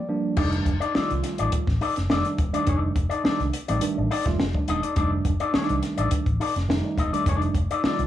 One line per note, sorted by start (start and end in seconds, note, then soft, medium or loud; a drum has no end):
0.00 0.34 D5 medium
0.08 0.35 F3 medium
0.08 0.35 G3 medium
0.08 0.35 A#3 medium
0.08 0.36 D4 loud
0.37 0.59 F1 loud
0.37 0.73 D#3 medium
0.37 0.73 G3 medium
0.37 0.73 A3 medium
0.37 0.73 D4 medium
0.37 0.53 D#4 medium
0.37 0.52 A4 medium
0.37 0.51 D5 medium
0.37 kick loud
0.37 crash loud
0.52 muted clean electric guitar stroke soft
0.52 closed hi-hat soft
0.65 0.78 F1 medium
0.65 muted clean electric guitar stroke medium
0.65 kick medium
0.65 closed hi-hat medium
0.80 0.93 D#4 medium
0.80 0.92 A4 medium
0.80 0.92 D5 medium
0.80 closed hi-hat soft
0.94 1.66 D#3 medium
0.94 1.66 G3 medium
0.94 1.66 A3 medium
0.94 1.10 D#4 medium
0.94 1.66 F4 loud
0.94 1.11 A4 medium
0.94 1.11 D5 medium
0.94 muted fingered electric bass stroke soft
0.94 snare loud
1.10 1.21 C2 medium
1.10 closed hi-hat soft
1.23 muted clean electric guitar stroke soft
1.23 snare soft
1.23 closed hi-hat medium
1.38 1.49 A1 medium
1.38 1.51 D#4 medium
1.38 1.50 A4 medium
1.38 1.50 D5 medium
1.38 closed hi-hat medium
1.52 muted clean electric guitar stroke soft
1.52 kick medium
1.52 closed hi-hat loud
1.67 1.78 A1 medium
1.67 kick loud
1.67 snare soft
1.81 1.93 D#4 medium
1.81 1.94 A4 medium
1.81 1.94 D5 medium
1.81 open hi-hat medium
1.96 2.07 F1 medium
1.96 snare soft
1.96 closed hi-hat medium
2.10 2.22 F1 medium
2.10 2.36 D#3 medium
2.10 2.36 G3 medium
2.10 2.37 A3 medium
2.10 2.37 D4 loud
2.10 2.25 D#4 medium
2.10 2.26 A4 medium
2.10 2.26 D5 medium
2.10 snare loud
2.25 closed hi-hat soft
2.38 2.50 E1 medium
2.38 muted clean electric guitar stroke soft
2.38 kick loud
2.38 closed hi-hat medium
2.53 2.96 D#3 medium
2.53 2.96 G3 medium
2.53 2.97 A3 medium
2.53 2.97 D4 medium
2.53 2.65 D#4 soft
2.53 2.65 A4 soft
2.53 2.64 D5 medium
2.53 closed hi-hat medium
2.67 2.89 F1 loud
2.67 2.88 D#4 medium
2.67 2.82 A4 medium
2.67 2.80 D5 medium
2.67 kick loud
2.67 closed hi-hat medium
2.81 muted clean electric guitar stroke soft
2.96 3.07 F1 medium
2.96 muted clean electric guitar stroke soft
2.96 kick medium
2.96 closed hi-hat medium
3.09 3.22 D#4 medium
3.09 3.22 A4 medium
3.09 3.21 D5 medium
3.09 closed hi-hat soft
3.24 3.51 D#3 medium
3.24 3.51 G3 medium
3.24 3.51 A3 medium
3.24 3.51 D4 loud
3.24 3.40 D#4 medium
3.24 3.40 A4 medium
3.24 3.41 D5 medium
3.24 muted fingered electric bass stroke soft
3.24 snare loud
3.40 3.50 C2 medium
3.40 closed hi-hat soft
3.53 muted clean electric guitar stroke soft
3.53 closed hi-hat medium
3.68 3.79 A1 medium
3.68 3.77 D#3 medium
3.68 3.77 G3 medium
3.68 3.77 A3 medium
3.68 3.77 C4 loud
3.68 3.80 D#4 medium
3.68 3.80 A4 medium
3.68 3.79 D5 medium
3.68 closed hi-hat medium
3.81 4.08 D#3 loud
3.81 4.08 G3 medium
3.81 4.08 A3 medium
3.81 4.08 D4 loud
3.81 closed hi-hat loud
3.98 4.08 A1 medium
3.98 muted clean electric guitar stroke soft
4.11 4.26 D#4 medium
4.11 4.26 A4 medium
4.11 4.25 D5 loud
4.11 open hi-hat medium
4.25 4.36 F1 medium
4.25 4.43 D#3 loud
4.25 4.43 G3 medium
4.25 4.43 A3 medium
4.25 4.43 F4 loud
4.25 muted clean electric guitar stroke soft
4.25 kick loud
4.25 snare soft
4.25 closed hi-hat medium
4.40 4.51 F1 medium
4.40 muted clean electric guitar stroke soft
4.40 snare loud
4.54 4.80 D#3 medium
4.54 4.81 G3 medium
4.54 4.81 A3 medium
4.54 4.81 D4 medium
4.54 muted clean electric guitar stroke soft
4.54 kick loud
4.68 4.80 E1 medium
4.68 4.80 D#4 medium
4.68 4.81 A4 medium
4.68 4.81 D#5 medium
4.68 closed hi-hat medium
4.83 4.95 D#4 soft
4.83 4.94 A4 medium
4.83 4.94 D5 medium
4.83 closed hi-hat medium
4.96 5.18 F1 loud
4.96 5.32 D#3 medium
4.96 5.32 G3 medium
4.96 5.32 A3 medium
4.96 5.32 D4 loud
4.96 5.12 D#4 medium
4.96 5.12 A4 medium
4.96 5.11 D5 medium
4.96 kick loud
4.96 closed hi-hat medium
5.12 muted clean electric guitar stroke soft
5.25 5.36 F1 medium
5.25 muted clean electric guitar stroke soft
5.25 kick medium
5.25 closed hi-hat medium
5.40 5.52 D#4 medium
5.40 5.52 A4 medium
5.40 5.51 D5 medium
5.40 closed hi-hat soft
5.53 6.25 D#3 medium
5.53 6.25 G3 medium
5.53 6.25 A3 medium
5.53 6.25 D4 loud
5.53 5.74 D#4 medium
5.53 5.75 A4 loud
5.53 5.75 D5 loud
5.53 muted fingered electric bass stroke soft
5.53 snare loud
5.69 5.80 C2 medium
5.69 closed hi-hat soft
5.82 muted clean electric guitar stroke soft
5.82 snare soft
5.82 closed hi-hat medium
5.97 6.08 A1 medium
5.97 6.09 D#4 soft
5.97 6.09 A4 medium
5.97 6.08 D5 medium
5.97 closed hi-hat medium
6.11 muted fingered electric bass stroke soft
6.11 kick loud
6.11 closed hi-hat loud
6.26 6.36 A1 medium
6.26 kick loud
6.26 closed hi-hat soft
6.40 6.52 D#4 medium
6.40 6.53 A4 medium
6.40 6.53 D5 medium
6.40 open hi-hat medium
6.56 6.66 F1 medium
6.56 muted clean electric guitar stroke soft
6.56 snare soft
6.56 closed hi-hat medium
6.69 6.81 F1 medium
6.69 6.95 D#3 medium
6.69 6.95 G3 medium
6.69 6.96 A3 medium
6.69 6.96 D#4 loud
6.69 muted clean electric guitar stroke soft
6.69 snare loud
6.85 muted clean electric guitar stroke soft
6.98 7.09 E1 loud
6.98 7.10 D#4 medium
6.98 7.10 A4 medium
6.98 7.11 D#5 medium
6.98 kick medium
6.98 closed hi-hat medium
7.12 7.55 D#3 medium
7.12 7.56 G3 medium
7.12 7.55 A3 medium
7.12 7.56 D4 medium
7.12 7.25 D#4 soft
7.12 7.24 A4 medium
7.12 7.24 D5 medium
7.12 closed hi-hat medium
7.26 7.47 F1 loud
7.26 7.47 D#4 medium
7.26 7.43 A4 medium
7.26 7.42 D5 loud
7.26 kick loud
7.26 closed hi-hat medium
7.42 muted clean electric guitar stroke soft
7.42 closed hi-hat soft
7.55 7.66 F1 loud
7.55 muted clean electric guitar stroke soft
7.55 kick medium
7.55 closed hi-hat medium
7.71 7.82 D#4 medium
7.71 7.81 A4 medium
7.71 7.81 D5 medium
7.71 closed hi-hat soft
7.83 8.07 D#3 medium
7.83 8.07 G3 medium
7.83 8.07 A3 medium
7.83 7.99 D#4 medium
7.83 8.07 F4 loud
7.83 8.00 A4 medium
7.83 8.00 D5 loud
7.83 muted fingered electric bass stroke soft
7.83 snare loud
7.99 8.07 C2 medium
7.99 closed hi-hat soft